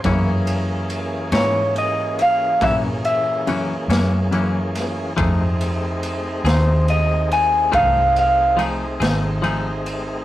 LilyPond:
<<
  \new Staff \with { instrumentName = "Clean electric guitar" } { \time 12/8 \key ges \lydian \tempo 4. = 47 r4. des''8 ees''8 f''8 fes''8 fes''8 r2 | r4. c''8 ees''8 gis''8 f''8 f''8 r2 | }
  \new Staff \with { instrumentName = "Tonewheel organ" } { \time 12/8 \key ges \lydian <fes bes des' aes'>1. | <a c' ees' gis'>1. | }
  \new Staff \with { instrumentName = "Clean electric guitar" } { \time 12/8 \key ges \lydian <ges, fes bes des'>8 r4 <fes bes des'>8 r4 <ges, fes bes des'>8 r8 <ges, fes bes des'>8 <fes bes des'>8 <ges, fes bes des'>8 r8 | <f a ees' gis'>8 r4 <a ees' gis'>8 r4 <f a ees' gis'>8 r8 <f a ees' gis'>8 <a ees' gis'>8 <f a ees' gis'>8 r8 | }
  \new Staff \with { instrumentName = "Fingered electric bass" } { \clef bass \time 12/8 \key ges \lydian ges,4. aes,4. bes,4. ges,4. | f,4. ees,4. c,4. gis,,4. | }
  \new DrumStaff \with { instrumentName = "Drums" } \drummode { \time 12/8 <bd cymr>8 cymr8 cymr8 <cymr sn>8 cymr8 cymr8 <bd cymr>8 cymr8 cymr8 <cymr sn>8 cymr8 <cymr sn>8 | <bd cymr>8 cymr8 cymr8 <cymr sn>8 cymr8 cymr8 <bd cymr>8 cymr8 cymr8 <cymr sn>8 cymr8 cymr8 | }
>>